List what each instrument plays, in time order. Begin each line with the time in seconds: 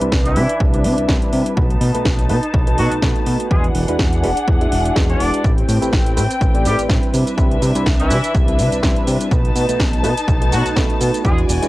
Already playing: string section D4 B4 E5
0.01 analog synth bass C2, reed electric piano G3 C4 D4 E4 B4, closed hi-hat
0.12 analog synth bass C2, kick, snare
0.25 horn section E3 E4, closed hi-hat
0.36 analog synth bass C3, reed electric piano G3 C4 D4 E4 B4, open hi-hat
0.49 closed hi-hat
0.60 analog synth bass C2, kick
0.74 reed electric piano G3 C4 D4 E4 D5, closed hi-hat
0.84 analog synth bass C3, open hi-hat
0.98 analog synth bass C2, closed hi-hat
1.08 analog synth bass C2, reed electric piano G3 C4 D4 E4 B4, kick, snare
1.22 closed hi-hat
1.33 analog synth bass C3, open hi-hat
1.46 closed hi-hat
1.57 analog synth bass B1, reed electric piano A3 B3 D#4 F#4 B4, string section D#4 A5, kick
1.71 closed hi-hat
1.81 analog synth bass B2, open hi-hat
1.94 analog synth bass B1, reed electric piano A3 B3 D#4 F#4 B4, closed hi-hat
2.05 analog synth bass B1, kick, snare
2.19 closed hi-hat
2.29 analog synth bass B2, reed electric piano A3 B3 D#4 F#4 B4, open hi-hat
2.43 closed hi-hat
2.54 analog synth bass B1, kick
2.67 reed electric piano A3 B3 D#4 F#4 B4, closed hi-hat
2.78 analog synth bass B2, horn section F#3 F#4, open hi-hat
2.91 analog synth bass B1, closed hi-hat
3.02 analog synth bass B1, reed electric piano A3 B3 D#4 F#4 B4, kick, snare
3.16 closed hi-hat
3.26 analog synth bass B2, open hi-hat
3.40 closed hi-hat
3.50 analog synth bass E2, reed electric piano G#3 D4 E4 F#4 B4, horn section G#3 G#4, string section D4 G#4 F#5, kick
3.64 closed hi-hat
3.75 analog synth bass E1, open hi-hat
3.88 analog synth bass E2, reed electric piano G#3 D4 E4 F#4 B4, closed hi-hat
3.99 analog synth bass E2, kick, snare
4.13 closed hi-hat
4.23 analog synth bass E1, reed electric piano G#3 D4 E4 F#4 B4, open hi-hat
4.37 closed hi-hat
4.48 analog synth bass E2, kick
4.61 reed electric piano G#3 D4 E4 F#4 E5, closed hi-hat
4.72 analog synth bass E1, open hi-hat
4.85 closed hi-hat
4.95 analog synth bass E2, reed electric piano G#3 D4 E4 F#4 B4, kick, snare
5.09 horn section D4 D5, closed hi-hat
5.20 analog synth bass E1, open hi-hat
5.34 closed hi-hat
5.44 analog synth bass A1, reed electric piano A3 C4 E4 G4 B4, string section C4 B4 G5, kick, shaker
5.58 closed hi-hat
5.69 analog synth bass A2, open hi-hat, shaker
5.81 analog synth bass A1, reed electric piano A3 C4 E4 G4 B4, closed hi-hat, shaker
5.93 analog synth bass A1, kick, snare, shaker
6.06 closed hi-hat
6.17 analog synth bass A2, reed electric piano A3 C4 E4 G4 B4, open hi-hat, shaker
6.30 closed hi-hat, shaker
6.41 analog synth bass A1, kick, shaker
6.54 reed electric piano A3 C4 E4 G4 D5, closed hi-hat
6.65 analog synth bass A2, horn section G3 G4, open hi-hat, shaker
6.79 analog synth bass A1, closed hi-hat, shaker
6.89 analog synth bass A1, reed electric piano G3 C4 D4 E4 B4, kick, snare, shaker
7.03 closed hi-hat
7.14 analog synth bass C3, string section D4 E5, open hi-hat, shaker
7.27 closed hi-hat, shaker
7.37 analog synth bass C2, reed electric piano G3 C4 D4 E4 B4, kick, shaker
7.51 closed hi-hat
7.62 analog synth bass C3, open hi-hat, shaker
7.75 analog synth bass C2, reed electric piano G3 C4 D4 E4 B4, closed hi-hat, shaker
7.86 analog synth bass C2, kick, snare, shaker
7.99 horn section E3 E4, closed hi-hat
8.10 analog synth bass C3, reed electric piano G3 C4 D4 E4 B4, open hi-hat, shaker
8.24 closed hi-hat, shaker
8.34 analog synth bass C2, kick, shaker
8.47 reed electric piano G3 C4 D4 E4 D5, closed hi-hat
8.59 analog synth bass C3, open hi-hat, shaker
8.72 analog synth bass C2, closed hi-hat, shaker
8.82 analog synth bass C2, reed electric piano G3 C4 D4 E4 B4, kick, snare, shaker
8.96 closed hi-hat
9.07 analog synth bass C3, open hi-hat, shaker
9.21 closed hi-hat, shaker
9.31 analog synth bass B1, reed electric piano A3 B3 D#4 F#4 B4, string section D#4 A5, kick, shaker
9.45 closed hi-hat
9.55 analog synth bass B2, open hi-hat, shaker
9.68 analog synth bass B1, reed electric piano A3 B3 D#4 F#4 B4, closed hi-hat, shaker
9.80 analog synth bass B1, kick, snare, shaker
9.93 closed hi-hat
10.03 analog synth bass B2, reed electric piano A3 B3 D#4 F#4 B4, open hi-hat, shaker
10.18 closed hi-hat, shaker
10.28 analog synth bass B1, kick, shaker
10.41 reed electric piano A3 B3 D#4 F#4 B4, closed hi-hat
10.52 analog synth bass B2, horn section F#3 F#4, open hi-hat, shaker
10.66 analog synth bass B1, closed hi-hat, shaker
10.76 analog synth bass B1, reed electric piano A3 B3 D#4 F#4 B4, kick, snare, shaker
10.90 closed hi-hat
11.01 analog synth bass B2, open hi-hat, shaker
11.14 closed hi-hat, shaker
11.25 analog synth bass E2, reed electric piano G#3 D4 E4 F#4 B4, horn section G#3 G#4, string section F#4 D5 G#5, kick, shaker
11.38 closed hi-hat
11.49 analog synth bass E1, open hi-hat, shaker
11.62 analog synth bass E2, reed electric piano G#3 D4 E4 F#4 B4, closed hi-hat, shaker